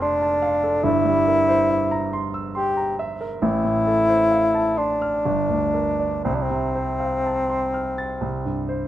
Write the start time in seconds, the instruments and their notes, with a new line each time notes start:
Already playing: grand piano F1 F2 C3 A4 C5 F5 A5 F6
0.00 bassoon D4, grand piano C6
0.22 grand piano A5
0.42 grand piano F5
0.63 grand piano A4
0.84 grand piano G1 G2, bassoon E4
1.05 grand piano G3
1.27 grand piano A#4
1.49 grand piano C5
1.70 grand piano E5
1.91 grand piano A#5
2.13 grand piano C6
2.34 grand piano E6
2.55 bassoon G4, grand piano C6
2.77 grand piano A#5
2.99 grand piano E5
3.21 grand piano A#4
3.42 grand piano A1, bassoon E4
3.64 grand piano A2
3.87 grand piano A4
4.09 grand piano C5
4.31 grand piano F5
4.55 grand piano A5
4.77 bassoon D4, grand piano C6
5.02 grand piano F6
5.25 grand piano G1
5.49 grand piano D2
5.74 grand piano A#4
6.00 grand piano D5
6.25 grand piano C2, bassoon C4
6.34 bassoon D4
6.42 bassoon C4
6.50 grand piano C3
6.75 grand piano C5
7.00 grand piano F5
7.26 grand piano A5
7.50 grand piano C6
7.74 grand piano F6
7.98 grand piano A6
8.21 grand piano C2
8.45 grand piano G2
8.69 grand piano C5